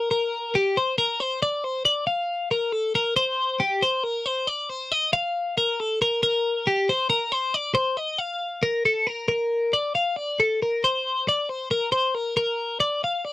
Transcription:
0.11 A#4
0.55 G4
0.77 C5
0.98 A#4
1.20 C5
1.43 D5
1.64 C5
1.85 D5
2.07 F5
2.51 A#4
2.72 A4
2.95 A#4
3.16 C5
3.60 G4
3.82 C5
4.04 A#4
4.26 C5
4.47 D5
4.69 C5
4.92 D#5
5.13 F5
5.58 A#4
5.80 A4
6.02 A#4
6.23 A#4
6.67 G4
6.89 C5
7.10 A#4
7.32 C5
7.54 D5
7.75 C5
7.97 D#5
8.18 F5
8.63 A#4
8.85 A4
9.07 A#4
9.28 A#4
9.73 D5
9.95 F5
10.16 D5
10.40 A4
10.62 A#4
10.84 C5
11.29 D5
11.49 C5
11.71 A#4
11.92 C5
12.15 A#4
12.37 A#4
12.80 D5
13.04 F5
13.25 D5

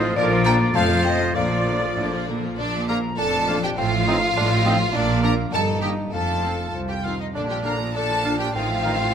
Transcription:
Already playing: A2 F3 F4 C5 D#5
0.02 F3 C4 F4
0.16 A#1 A#2 D3 F3 D4 F4 A#4 D5
0.31 F3 A#3 F4
0.37 F3
0.46 D3 F3 D4 A#4 G5 A#5
0.56 F4 D5
0.60 F3 A#3
0.74 F1 F2 F3 A3 C4 F4 A4 C5 F5 A5
0.89 F3 A3 F4
0.96 F3
1.04 F3 A3 C4 A4 D#5 G5
1.16 F3 A3 C5
1.21 F4
1.34 A#1 A#2 D3 F3 D4 F4 A#4 D5 F5
1.51 F3 A#3 F4
1.57 F3
1.67 D3 F3 D4 A#4
1.77 F4
1.82 F3 A#3 F4
1.96 A#1 A2 D3 D4 A#4 D5
2.12 F3 A#3 F4
2.18 F4
2.27 A#2 D3 F3 D4 A#4
2.38 F3
2.44 F3 A#3 F4
2.58 A#1 A#2 D4 D5
2.79 F3
2.88 F3 A#3 D4 F4 A#4 F5 A#5
2.99 F4
3.17 F1 F2 D4 A4 D5 A5
3.38 F4
3.48 F3 A#3 D4 F4 F5
3.58 F3
3.63 G4 G5
3.77 A1 A2 C4 F4 F5
3.98 F3
4.07 F3 C4 D#4 D#5
4.17 F4
4.36 A1 A2 D4 D#5
4.56 F4
4.65 F3 C4 D#4 D#5
4.75 F3
4.94 A#1 A#2 A#3 D4 D5
5.14 A#3
5.23 F3 A#3 D4 A#4 D5 A#5
5.33 F4 D5
5.53 G1 G2 D#4 A4 A5
5.73 A#3
5.81 D#3 G3 A#3 D#4 G4 D#5 G5
5.92 D#4 D#5
6.12 F1 F2 F4 A4 A5
6.33 C4
6.43 F3 C4 F5
6.54 F4
6.73 C2 F3 C5
6.89 G4 G5
6.94 F4
7.03 D#3 F3 C4 F4 F5
7.15 C4
7.20 D#4 D#5
7.34 A#1 A#2 D3 D4 D5
7.48 F3 F4 G4 G5
7.55 D4
7.63 D3 F3 D4 A#4 F5 A#5
7.75 F4
7.80 F3 F4
7.93 D3 D4 A4 D5 A5
8.10 F3 F4
8.15 A#4
8.25 D3 F3 D4 F5
8.35 F4
8.40 F3 F4 G4 G5
8.54 A1 A2 D#3 C4 D#4 F4 F5
8.69 F3 F4
8.74 D#4
8.84 D#3 F3 D#4 F5
8.94 F4
8.99 F3 F4

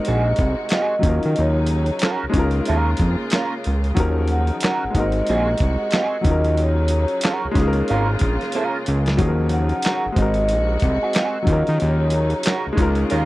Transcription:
Already playing: C3 G#3 C4 D#4 F#4 A#4 D#5
0.05 A#1 C4 F#4 G#4, closed hi-hat
0.36 C2, kick, closed hi-hat
0.69 C4, snare, clap, closed hi-hat
0.73 F#4 G#4 D#5
0.99 F#3 C#4, closed hi-hat
1.03 D#2 C#3 F#3 D#4 F4, kick
1.09 A#4
1.23 D#3, closed hi-hat
1.36 D#2 C#5, closed hi-hat
1.67 closed hi-hat
1.86 closed hi-hat
1.99 C#4 F#4 A#4, snare, clap, closed hi-hat
2.23 C#2
2.30 G#3 C#4
2.34 C#2 A#3 D#4 F4, kick, closed hi-hat
2.39 A#4
2.51 closed hi-hat
2.65 D#2 C#4 F4 A#4, closed hi-hat
2.97 F2, kick, closed hi-hat
3.30 C#4, snare, clap, closed hi-hat
3.34 F4 A#4
3.64 C#2, closed hi-hat
3.84 closed hi-hat
3.95 D#2 D#3 F3 F#3 C#4 D#4, kick, closed hi-hat
4.00 A#4
4.28 F#5, closed hi-hat
4.47 closed hi-hat
4.60 C#4 F#4, snare, clap, closed hi-hat
4.65 A#4
4.84 G#1
4.90 G#3 A#3
4.95 G#1 C3 G#3 D#4 F#4 D#5, kick, closed hi-hat
4.99 C4 A#4
5.12 closed hi-hat
5.27 A#1 C4 F#4 G#4, closed hi-hat
5.58 C2, kick, closed hi-hat
5.91 C4 F#4, snare, clap, closed hi-hat
5.95 G#4 D#5
6.21 F#3 C#4, kick, closed hi-hat
6.26 D#2 C#3 F#3 D#4 F4
6.31 A#4
6.44 closed hi-hat
6.57 C#5, closed hi-hat
6.88 closed hi-hat
7.08 closed hi-hat
7.21 C#4 F#4, snare, clap, closed hi-hat
7.25 A#4
7.45 C#2
7.51 G#3 C#4, kick, closed hi-hat
7.56 C#2 A#3 D#4 F4, snare
7.61 G#4
7.67 A#4
7.73 closed hi-hat
7.88 G#1 C#4 F4 A#4, closed hi-hat
8.19 A#1, kick, closed hi-hat
8.41 snare, closed hi-hat
8.52 C#4 F4, closed hi-hat
8.56 A#4
8.86 C#2, closed hi-hat
9.06 snare, closed hi-hat
9.17 D#2 D#3 F3 F#3 C#4 D#4, kick, closed hi-hat
9.22 G#4
9.28 A#4
9.49 F#5, closed hi-hat
9.69 closed hi-hat
9.82 C#4 F#4, snare, clap, closed hi-hat
9.86 A#4
10.06 G#1
10.12 G#3 C4
10.16 G#1 C3 G#3 D#4 F#4 D#5, kick, closed hi-hat
10.22 A#4
10.34 closed hi-hat
10.49 A#1, closed hi-hat
10.80 C2, kick, closed hi-hat
11.03 C4 F#4 G#4
11.13 C4 F#4 G#4, snare, clap, closed hi-hat
11.43 F#3 C#4
11.47 D#2 C#3 F#3 D#4 F4, kick, closed hi-hat
11.52 A#4
11.67 D#3, closed hi-hat
11.80 D#2 C#5, closed hi-hat
12.10 closed hi-hat
12.30 closed hi-hat
12.43 C#4 F#4 A#4, snare, clap, closed hi-hat
12.67 C#2
12.73 G#3 C#4
12.77 C#2 A#3 D#4 F4, kick, closed hi-hat
12.82 A#4
12.95 closed hi-hat
13.10 D#2 C#4 F4 A#4, closed hi-hat

